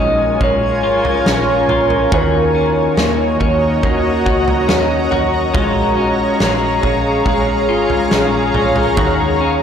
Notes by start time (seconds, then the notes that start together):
Already playing: G#3 C#4 F4 A#4 C#5 D#5 G#5
0.00 A#1
0.41 A#1 G#3 C#5, kick, floor tom
0.83 G#1 F4
1.05 floor tom
1.26 A#1 C#4, snare
1.68 A#1 F4, floor tom
1.90 floor tom
2.12 D#2 D#3 F#4 A#4 D#5 A#5, kick, floor tom
2.55 C#4
2.97 D#2 A#3, snare
3.40 D#2 C#4, kick, floor tom
3.83 D#2 A#3, kick, floor tom
4.26 C#2 F#4, kick
4.48 floor tom
4.68 D#2 C#4, snare
5.11 D#2 F#4, floor tom
5.54 A#1 G#3 F4 G#4 F5, kick, floor tom
5.97 C#4
6.40 A#1 G#3, snare
6.83 A#1 C#4, kick, floor tom
7.25 A#1 G#3, kick, floor tom
7.69 G#1 F4
7.90 floor tom
8.11 A#1 C#4, snare
8.54 A#1 F4, floor tom
8.76 floor tom
8.97 D#2 D#3 F#4 D#5, kick, floor tom
9.40 C#4